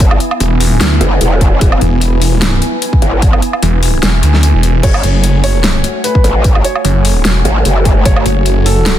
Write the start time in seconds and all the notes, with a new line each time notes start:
Already playing: G#1 B3 E4 G#5
0.00 kick, closed hi-hat
0.11 low woodblock
0.20 closed hi-hat
0.31 low woodblock
0.40 E1, closed hi-hat
0.61 open hi-hat
0.81 D2, snare, closed hi-hat
1.01 F#1, closed hi-hat
1.21 E1, closed hi-hat
1.41 kick, closed hi-hat
1.61 E1, kick, closed hi-hat
1.72 low woodblock
1.81 E1, closed hi-hat
2.01 closed hi-hat
2.22 open hi-hat
2.42 snare, closed hi-hat
2.62 closed hi-hat
2.82 closed hi-hat
2.93 kick
3.02 G#1, closed hi-hat
3.22 kick, closed hi-hat
3.33 low woodblock
3.42 closed hi-hat
3.53 low woodblock
3.62 E1, closed hi-hat
3.83 open hi-hat
4.03 E1, snare, closed hi-hat
4.23 D2, closed hi-hat
4.34 snare
4.43 closed hi-hat
4.54 E1
4.63 closed hi-hat
4.83 F#1 A3 F#4 C#5, kick, closed hi-hat, crash
4.94 low woodblock
5.03 F#1, closed hi-hat
5.24 closed hi-hat
5.44 C#5, open hi-hat
5.64 snare, closed hi-hat
5.84 closed hi-hat
6.04 B4, closed hi-hat
6.15 kick
6.24 A1, closed hi-hat
6.44 kick, closed hi-hat
6.55 low woodblock
6.64 C#5, closed hi-hat
6.75 low woodblock
6.85 F#1, closed hi-hat
7.05 open hi-hat
7.25 E1, snare, closed hi-hat
7.45 G#1, closed hi-hat
7.65 F#1, closed hi-hat
7.85 kick, closed hi-hat
8.05 F#1 C#5, kick, closed hi-hat
8.16 low woodblock
8.26 F#1, closed hi-hat
8.46 closed hi-hat
8.66 A4, open hi-hat
8.86 snare, closed hi-hat